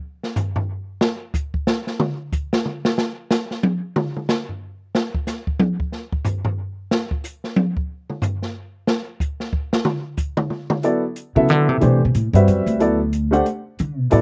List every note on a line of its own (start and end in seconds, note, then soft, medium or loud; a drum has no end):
0.23 snare soft
0.36 floor tom loud
0.36 hi-hat pedal medium
0.56 floor tom loud
1.01 snare loud
1.34 kick medium
1.34 hi-hat pedal medium
1.54 kick medium
1.67 snare loud
1.87 snare soft
2.00 mid tom loud
2.33 kick medium
2.33 hi-hat pedal medium
2.53 snare loud
2.65 mid tom medium
2.85 snare loud
2.98 snare medium
3.31 snare loud
3.31 hi-hat pedal medium
3.51 snare soft
3.63 high tom medium
3.96 mid tom medium
4.16 mid tom soft
4.29 snare medium
4.29 hi-hat pedal medium
4.49 floor tom soft
4.95 snare medium
5.14 kick medium
5.27 snare medium
5.27 hi-hat pedal medium
5.47 kick medium
5.60 high tom loud
5.80 kick medium
5.92 snare soft
6.12 kick medium
6.25 floor tom medium
6.25 hi-hat pedal medium
6.45 floor tom loud
6.91 snare loud
7.11 kick medium
7.24 hi-hat pedal medium
7.44 snare soft
7.56 high tom loud
7.77 kick medium
8.10 mid tom soft
8.22 floor tom medium
8.22 hi-hat pedal medium
8.42 snare soft
8.87 snare loud
9.20 kick medium
9.20 hi-hat pedal medium
9.40 snare soft
9.53 kick medium
9.73 snare loud
9.85 mid tom loud
10.17 kick medium
10.17 hi-hat pedal medium
10.37 mid tom loud
10.50 mid tom medium
10.70 mid tom loud
10.83 11.01 F#3 soft
10.83 11.01 B3 soft
10.83 11.01 E4 soft
10.83 11.02 A4 soft
10.83 11.02 D5 medium
10.83 closed hi-hat soft
11.16 closed hi-hat soft
11.35 11.50 C#3 medium
11.35 11.78 F#3 medium
11.35 11.79 B3 soft
11.35 11.79 E4 medium
11.35 11.79 A4 medium
11.35 11.79 E5 medium
11.49 11.69 D3 medium
11.49 closed hi-hat soft
11.69 11.81 C3 medium
11.80 11.93 B2 medium
11.80 11.99 E3 medium
11.80 11.99 A3 soft
11.80 11.99 D4 soft
11.80 12.00 G4 medium
11.80 12.00 C5 medium
11.80 closed hi-hat soft
11.93 12.03 C3 medium
12.05 12.15 B2 medium
12.15 12.33 A2 medium
12.15 closed hi-hat soft
12.33 12.46 G2 medium
12.33 12.77 G3 medium
12.33 12.77 C4 medium
12.33 12.77 F#4 medium
12.33 12.77 B4 medium
12.33 12.78 E5 medium
12.33 closed hi-hat soft
12.48 12.66 F#2 medium
12.48 closed hi-hat soft
12.66 13.41 D2 medium
12.66 closed hi-hat soft
12.79 12.97 F#3 medium
12.79 12.98 B3 soft
12.79 12.98 E4 soft
12.79 12.98 A4 soft
12.79 12.98 D5 medium
12.79 closed hi-hat soft
13.13 closed hi-hat soft
13.31 13.43 A3 medium
13.31 13.43 D4 medium
13.31 13.43 G4 medium
13.31 13.44 C5 medium
13.31 13.44 F#5 medium
13.31 closed hi-hat soft
13.46 closed hi-hat soft
13.79 13.98 D3 medium
13.79 closed hi-hat soft
13.98 14.10 B2 medium
14.10 14.21 A2 medium
14.10 14.21 F#3 medium
14.10 14.21 B3 soft
14.10 14.21 E4 medium
14.10 14.21 A4 medium
14.10 14.21 D5 medium
14.10 closed hi-hat soft